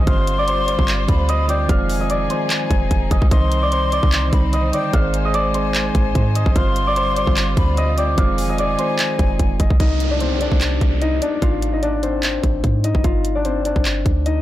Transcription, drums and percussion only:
0.07 kick, closed hi-hat
0.27 closed hi-hat
0.48 closed hi-hat
0.68 closed hi-hat
0.79 kick
0.88 clap, closed hi-hat
1.08 kick, closed hi-hat
1.29 closed hi-hat
1.49 closed hi-hat
1.69 kick, closed hi-hat
1.89 open hi-hat
2.10 closed hi-hat
2.30 closed hi-hat
2.50 clap, closed hi-hat
2.71 kick, closed hi-hat
2.91 kick, closed hi-hat
3.11 kick, closed hi-hat
3.22 kick
3.31 kick, closed hi-hat
3.52 closed hi-hat
3.72 closed hi-hat
3.92 closed hi-hat
4.03 kick
4.12 clap, closed hi-hat
4.33 kick, closed hi-hat
4.53 closed hi-hat
4.73 closed hi-hat
4.93 kick, closed hi-hat
5.14 closed hi-hat
5.34 closed hi-hat
5.54 closed hi-hat
5.75 clap, closed hi-hat
5.95 kick, closed hi-hat
6.15 kick, closed hi-hat
6.35 closed hi-hat
6.46 kick
6.56 kick, closed hi-hat
6.76 closed hi-hat
6.96 closed hi-hat
7.16 closed hi-hat
7.27 kick
7.37 clap, closed hi-hat
7.57 kick, closed hi-hat
7.77 closed hi-hat
7.98 closed hi-hat
8.18 kick, closed hi-hat
8.38 open hi-hat
8.58 closed hi-hat
8.79 closed hi-hat
8.99 clap, closed hi-hat
9.19 kick, closed hi-hat
9.39 kick, closed hi-hat
9.60 kick, closed hi-hat
9.70 kick
9.80 kick, closed hi-hat
10.00 closed hi-hat
10.20 closed hi-hat
10.41 closed hi-hat
10.52 kick
10.61 clap, closed hi-hat
10.81 kick, closed hi-hat
11.02 closed hi-hat
11.22 closed hi-hat
11.42 kick, closed hi-hat
11.62 closed hi-hat
11.83 closed hi-hat
12.03 closed hi-hat
12.23 clap, closed hi-hat
12.43 kick, closed hi-hat
12.64 kick, closed hi-hat
12.84 closed hi-hat
12.95 kick
13.04 kick, closed hi-hat
13.25 closed hi-hat
13.45 closed hi-hat
13.65 closed hi-hat
13.76 kick
13.85 clap, closed hi-hat
14.06 kick, closed hi-hat
14.26 closed hi-hat

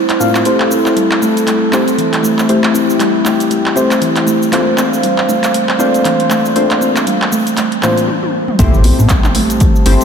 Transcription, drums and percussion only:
0.09 clap, closed hi-hat
0.21 shaker
0.35 clap, shaker
0.45 closed hi-hat, shaker
0.60 clap
0.71 shaker
0.86 clap, shaker
0.97 closed hi-hat, shaker
1.11 clap
1.22 shaker
1.37 closed hi-hat, shaker
1.47 clap, closed hi-hat, shaker
1.73 clap, shaker
1.88 closed hi-hat, shaker
1.99 closed hi-hat, shaker
2.13 clap, closed hi-hat
2.24 shaker
2.39 clap, shaker
2.49 closed hi-hat, shaker
2.64 clap
2.75 shaker
2.90 shaker
3.00 clap, closed hi-hat, shaker
3.25 clap, shaker
3.40 closed hi-hat, shaker
3.51 closed hi-hat, shaker
3.66 clap
3.77 shaker
3.91 clap, closed hi-hat, shaker
4.02 closed hi-hat, shaker
4.16 clap, closed hi-hat
4.27 shaker
4.43 shaker
4.53 clap, closed hi-hat, shaker
4.78 clap, shaker
4.94 shaker
5.03 closed hi-hat, shaker
5.18 clap
5.29 shaker
5.44 clap, closed hi-hat, shaker
5.54 closed hi-hat, shaker
5.69 clap
5.80 shaker
5.94 closed hi-hat, shaker
6.05 clap, closed hi-hat, shaker
6.20 closed hi-hat
6.30 clap, shaker
6.46 shaker
6.56 closed hi-hat, shaker
6.71 clap, closed hi-hat
6.82 shaker
6.96 clap, closed hi-hat, shaker
7.07 closed hi-hat, shaker
7.22 clap
7.32 shaker
7.47 closed hi-hat, shaker
7.57 clap, closed hi-hat, shaker
7.72 closed hi-hat
7.83 clap, shaker
7.98 closed hi-hat, shaker
8.08 high tom
8.23 high tom
8.48 mid tom
8.59 kick, closed hi-hat, muted conga, high conga, shaker
8.74 shaker
8.84 open hi-hat, high conga
8.99 mid tom, muted conga, shaker
9.09 kick, clap, closed hi-hat, high conga, shaker
9.24 clap, mid tom, shaker
9.35 open hi-hat, muted conga
9.50 closed hi-hat, shaker
9.60 kick, closed hi-hat, low conga, shaker
9.76 shaker
9.86 open hi-hat, mid tom, muted conga
10.01 closed hi-hat

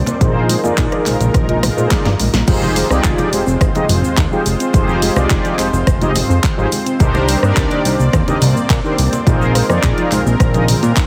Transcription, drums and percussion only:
0.06 closed hi-hat, muted conga, shaker
0.21 kick, closed hi-hat, low conga, shaker
0.49 open hi-hat, shaker
0.64 muted conga, shaker
0.78 kick, clap, closed hi-hat, shaker
0.92 cross-stick, closed hi-hat
1.06 clap, open hi-hat, muted conga, shaker
1.21 closed hi-hat, high conga, shaker
1.34 kick, cross-stick, closed hi-hat, shaker
1.49 closed hi-hat, high conga
1.63 cross-stick, open hi-hat, muted conga, high conga, low conga, shaker
1.78 shaker
1.91 kick, snare, clap, closed hi-hat, shaker
2.05 snare, closed hi-hat, muted conga
2.19 open hi-hat, low conga, shaker
2.34 snare, closed hi-hat, shaker
2.47 kick, closed hi-hat, crash, low conga, cabasa, shaker
2.62 high conga, shaker
2.76 open hi-hat, muted conga, cabasa, shaker
2.90 cross-stick, cabasa, shaker
3.04 kick, clap, closed hi-hat, cabasa, shaker
3.18 closed hi-hat, muted conga, shaker
3.33 open hi-hat, cabasa, shaker
3.46 cabasa, shaker
3.61 kick, cross-stick, closed hi-hat, cabasa, shaker
3.75 closed hi-hat, muted conga, high conga, shaker
3.89 open hi-hat, low conga, cabasa, shaker
4.04 cabasa, shaker
4.17 kick, clap, closed hi-hat, muted conga, cabasa, shaker
4.33 shaker
4.46 open hi-hat, cabasa, shaker
4.60 closed hi-hat, cabasa, shaker
4.73 kick, closed hi-hat, muted conga, low conga, cabasa, shaker
4.88 high conga, shaker
5.02 open hi-hat, cabasa, shaker
5.16 cross-stick, muted conga, cabasa, shaker
5.30 kick, clap, closed hi-hat, cabasa, shaker
5.45 closed hi-hat, shaker
5.59 clap, open hi-hat, cabasa, shaker
5.73 muted conga, cabasa, shaker
5.87 kick, cross-stick, closed hi-hat, cabasa, shaker
6.01 closed hi-hat, high conga, shaker
6.15 open hi-hat, muted conga, low conga, cabasa, shaker
6.30 cabasa, shaker
6.44 kick, clap, closed hi-hat, cabasa, shaker
6.59 shaker
6.72 open hi-hat, muted conga, cabasa, shaker
6.86 closed hi-hat, cabasa, shaker
6.99 kick, closed hi-hat, low conga, cabasa, shaker
7.14 muted conga, high conga, shaker
7.28 open hi-hat, cabasa, shaker
7.43 cross-stick, cabasa, shaker
7.56 kick, clap, closed hi-hat, cabasa, shaker
7.71 closed hi-hat, muted conga, shaker
7.85 open hi-hat, cabasa, shaker
7.99 cabasa, shaker
8.13 kick, cross-stick, closed hi-hat, muted conga, cabasa, shaker
8.28 closed hi-hat, high conga, shaker
8.42 open hi-hat, low conga, cabasa, shaker
8.56 cabasa, shaker
8.70 kick, clap, closed hi-hat, muted conga, cabasa, shaker
8.85 shaker
8.98 open hi-hat, cabasa, shaker
9.13 closed hi-hat, muted conga, cabasa, shaker
9.27 kick, closed hi-hat, low conga, cabasa, shaker
9.41 high conga, shaker
9.55 cross-stick, open hi-hat, cabasa, shaker
9.70 cross-stick, muted conga, cabasa, shaker
9.83 kick, clap, closed hi-hat, cabasa, shaker
9.98 closed hi-hat, shaker
10.12 clap, open hi-hat, muted conga, cabasa, shaker
10.26 cabasa, shaker
10.40 kick, cross-stick, closed hi-hat, cabasa, shaker
10.54 closed hi-hat, high conga, shaker
10.68 open hi-hat, muted conga, low conga, cabasa, shaker
10.83 closed hi-hat, cabasa, shaker
10.96 kick, clap, closed hi-hat, cabasa, shaker

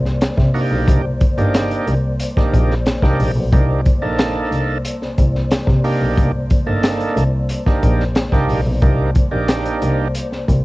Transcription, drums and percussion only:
0.05 snare
0.21 snare, closed hi-hat
0.37 kick, snare
0.55 open hi-hat
0.88 kick, closed hi-hat
1.21 kick, closed hi-hat
1.38 closed hi-hat
1.54 snare, closed hi-hat
1.71 closed hi-hat
1.87 closed hi-hat
2.20 closed hi-hat
2.37 kick, snare
2.54 kick, closed hi-hat
2.71 snare
2.86 snare, closed hi-hat
3.02 kick, snare
3.20 open hi-hat
3.53 kick, closed hi-hat
3.85 kick, closed hi-hat
4.19 snare, closed hi-hat
4.52 closed hi-hat
4.85 closed hi-hat
5.02 snare
5.18 kick, closed hi-hat
5.35 snare
5.51 snare, closed hi-hat
5.67 kick, snare
5.84 open hi-hat
6.18 kick, closed hi-hat
6.50 kick, closed hi-hat
6.83 snare, closed hi-hat
7.00 closed hi-hat
7.17 closed hi-hat
7.49 closed hi-hat
7.66 kick, snare
7.83 kick, closed hi-hat
8.00 snare
8.15 snare, closed hi-hat
8.32 kick, snare
8.49 open hi-hat
8.82 kick, closed hi-hat
9.15 kick, closed hi-hat
9.48 snare, closed hi-hat
9.65 closed hi-hat
9.82 closed hi-hat
10.15 closed hi-hat
10.32 snare
10.48 kick, closed hi-hat

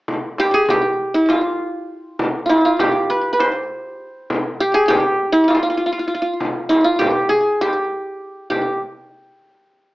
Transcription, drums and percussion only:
0.08 frame drum
0.38 frame drum
0.69 frame drum
1.29 frame drum
2.19 frame drum
2.49 frame drum
2.79 frame drum
3.40 frame drum
4.30 frame drum
4.90 frame drum
5.50 frame drum
6.40 frame drum
6.71 frame drum
7.01 frame drum
7.61 frame drum
8.51 frame drum

